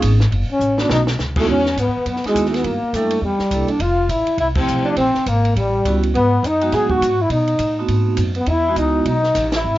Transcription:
0.02 upright bass G#1, kick, hi-hat pedal, ride
0.20 snare
0.31 upright bass F#1, kick, ride
0.49 trombone C#4, muted upright bass stroke
0.59 upright bass A1, hi-hat pedal
0.78 vibraphone A3 B3 C#4 D#4 F#4, trombone D4, snare
0.89 upright bass B1, trombone D#4, snare
1.07 snare
1.19 upright bass C#2, snare, hi-hat pedal
1.36 vibraphone G#3 B3 D#4 E4 F#4, trombone A3, kick, crash
1.40 tenor saxophone A3
1.47 upright bass E2, trombone C#4, tenor saxophone C#4, kick
1.65 snare
1.77 upright bass G#2, tenor saxophone B3, trombone B3, kick, hi-hat pedal, ride
1.87 upright bass E2
1.96 upright bass D#2
2.06 upright bass F#2, tenor saxophone B3, kick, ride
2.10 trombone B3
2.16 snare
2.24 vibraphone G#3 B3 D#4 E4 F#4, muted upright bass stroke, snare, ride
2.28 tenor saxophone G#3, trombone G#3
2.35 upright bass D#2, kick, hi-hat pedal, ride
2.45 tenor saxophone A3, snare
2.51 trombone A3, tenor saxophone B3, snare, ride
2.56 trombone B3
2.64 upright bass G2, trombone A#3, tenor saxophone A#3, kick, ride
2.82 muted upright bass stroke
2.93 upright bass F#2, vibraphone G3 A#3 D4 E4 A4, trombone A3, tenor saxophone A3, kick, hi-hat pedal, ride
3.11 ride
3.22 upright bass E2, trombone G3, kick
3.26 tenor saxophone G3
3.39 muted upright bass stroke, snare
3.51 upright bass C2, vibraphone G3 A#3 D4 E4 A4, kick, hi-hat pedal, ride
3.69 trombone D4, tenor saxophone D4, muted upright bass stroke, ride
3.80 upright bass F1, trombone F4, tenor saxophone F4, kick, ride
4.09 upright bass A1, tenor saxophone E4, trombone E4, kick, hi-hat pedal, ride
4.27 muted upright bass stroke, ride
4.38 upright bass C2, tenor saxophone E4, trombone E4, kick, ride
4.55 vibraphone F3 A3 C4 E4 G4, tenor saxophone C4, trombone C4, kick, crash
4.68 upright bass B1, hi-hat pedal
4.85 tenor saxophone D4, muted upright bass stroke
4.90 trombone D4
4.97 upright bass A#1, tenor saxophone C4, trombone C4, kick, ride
5.14 muted upright bass stroke, snare
5.26 upright bass G#1, tenor saxophone A#3, trombone A#3, kick, hi-hat pedal, ride
5.45 ride
5.56 upright bass A1, tenor saxophone G3, trombone G3, kick, ride
5.85 upright bass C#2, vibraphone G3 B3 C#4 E4 F#4, kick, hi-hat pedal, ride
6.03 ride
6.14 upright bass G#2, tenor saxophone B3, trombone B3, kick, ride
6.43 upright bass F#2, tenor saxophone D#4, kick, hi-hat pedal, ride
6.47 trombone D#4
6.61 vibraphone F#3 G#3 B3 D#4 F#4, ride
6.72 upright bass A2, tenor saxophone G#4, trombone G#4, kick, snare, ride
6.90 tenor saxophone F#4, trombone F#4, kick
7.01 upright bass G#2, kick, hi-hat pedal, ride
7.22 tenor saxophone E4, trombone E4
7.30 upright bass B2, tenor saxophone D#4, trombone D#4, kick, ride
7.48 ride
7.59 upright bass A2, kick, hi-hat pedal, ride
7.79 vibraphone A3 B3 C4 D#4 F#4
7.88 upright bass G#2, kick, ride
8.17 upright bass F#2, kick, hi-hat pedal, ride
8.35 tenor saxophone B3, ride
8.39 trombone B3
8.46 upright bass E2, tenor saxophone E4, trombone E4, kick, ride
8.67 vibraphone G#3 B3 D#4 E4 F#4
8.76 upright bass C#2, tenor saxophone D#4, trombone D#4, kick, hi-hat pedal, ride
9.05 upright bass B1, tenor saxophone D#4, trombone D#4, kick, ride
9.23 snare
9.35 upright bass A1, kick, snare, hi-hat pedal, ride
9.52 trombone E4, tenor saxophone E4, snare, ride
9.64 upright bass G#1
9.74 snare

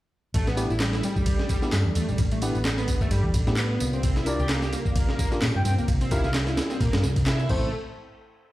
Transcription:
0.34 fingered electric bass A1, tonewheel organ G3 A3 D4, analog synth lead A3, kick, ride, tambourine
0.47 analog synth lead B3, snare, tambourine
0.57 tine electric piano B3 D4 E4 G4, ride, tambourine
0.70 fingered electric bass A1, analog synth lead E4, tambourine
0.80 analog synth lead G3, snare, clap, ride, tambourine
0.93 analog synth lead E4, snare, tambourine
1.03 analog synth lead G3, ride, tambourine
1.16 kick, tambourine
1.26 kick, ride, tambourine
1.39 snare
1.49 analog synth lead G3, kick, ride, tambourine
1.62 tine electric piano B3 D4 E4 G4, muted fingered electric bass stroke, snare, tambourine
1.72 fingered electric bass G2, snare, clap, open hi-hat, tambourine
1.86 fingered electric bass E2
1.95 fingered electric bass E2, analog synth lead A3, ride, tambourine
2.08 fingered electric bass A1, analog synth lead G3, tambourine
2.18 fingered electric bass A1, kick, ride, tambourine
2.31 analog synth lead A3, ride, tambourine
2.42 analog synth lead B3, tine electric piano B3 D4 E4 G4, ride, tambourine
2.55 fingered electric bass A1, tambourine
2.65 snare, clap, ride, tambourine
2.78 analog synth lead B3, snare, tambourine
2.88 kick, ride, tambourine
3.01 analog synth lead A3, kick, tambourine
3.11 fingered electric bass G2, analog synth lead G3, ride, tambourine
3.24 fingered electric bass E2, kick
3.34 fingered electric bass A1, kick, ride, tambourine
3.47 fingered electric bass A2, tine electric piano B3 D4 E4 G4, snare, tambourine
3.57 analog synth lead B3, clap, ride, tambourine
3.70 analog synth lead B3
3.80 fingered electric bass C2, tonewheel organ C3 A#3 F4, ride, tambourine
3.93 analog synth lead C4, tambourine
4.03 fingered electric bass C2, analog synth lead C4, kick, ride, tambourine
4.16 analog synth lead E4, snare, tambourine
4.26 tine electric piano D4 F4 G4 A#4, soft synth lead D5, ride, tambourine
4.39 fingered electric bass C2, analog synth lead G4, tambourine
4.49 analog synth lead A#3, snare, clap, ride, tambourine
4.62 analog synth lead G4, snare, tambourine
4.73 analog synth lead A#3, ride, tambourine
4.86 kick, tambourine
4.96 kick, ride, tambourine
5.09 snare
5.19 analog synth lead A#3, kick, ride, tambourine
5.32 tine electric piano D4 F4 G4 A#4, muted fingered electric bass stroke, snare, tambourine
5.42 fingered electric bass A#2, snare, clap, open hi-hat, tambourine
5.55 fingered electric bass G2, soft synth lead G5
5.65 fingered electric bass G2, analog synth lead C4, soft synth lead G5, ride, tambourine
5.78 fingered electric bass C2, analog synth lead A#3, tambourine
5.88 fingered electric bass C2, kick, ride, tambourine
6.01 analog synth lead C4, ride, tambourine
6.11 tine electric piano D4 F4 G4 A#4, analog synth lead E4, soft synth lead F5, kick, ride, tambourine
6.24 fingered electric bass C2, soft synth lead F5, snare, tambourine
6.34 snare, clap, ride, tambourine
6.47 analog synth lead E4, snare, tambourine
6.57 snare, ride, tambourine
6.70 analog synth lead C4, snare, tambourine
6.80 fingered electric bass A#2, analog synth lead A#3, kick, ride, tambourine
6.93 fingered electric bass G2, snare, ride
7.03 fingered electric bass C2, snare, tambourine
7.16 fingered electric bass C3, kick, ride, tambourine
7.27 analog synth lead E4, snare, clap, ride, tambourine
7.39 analog synth lead E4, tambourine
7.49 fingered electric bass A1, tonewheel organ A2 A3 C4 E4 E5, analog synth lead A3, tine electric piano A3 C4 E4 C5, kick, crash

